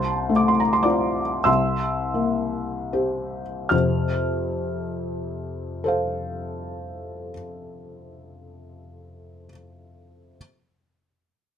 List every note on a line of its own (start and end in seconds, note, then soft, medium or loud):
0.00 1.40 C2 medium
0.00 0.32 C5 medium
0.00 0.32 A5 soft
0.00 0.35 C6 medium
0.29 1.21 A3 soft
0.36 0.49 D6 soft
0.48 0.61 C6 medium
0.60 0.73 A#5 medium
0.73 0.86 C6 medium
0.83 1.42 C4 soft
0.83 1.42 F4 soft
0.83 1.41 D5 soft
0.83 1.45 D6 medium
1.44 3.67 C2 soft
1.44 3.67 E5 soft
1.44 3.67 C6 soft
1.44 3.70 E6 medium
2.14 3.41 A#3 soft
2.93 3.67 C4 soft
2.93 3.67 G4 soft
3.69 7.33 F2 soft
3.69 7.33 C3 soft
3.69 7.31 F6 soft
5.84 9.46 A4 soft
5.84 9.47 C5 soft
5.88 9.50 F5 soft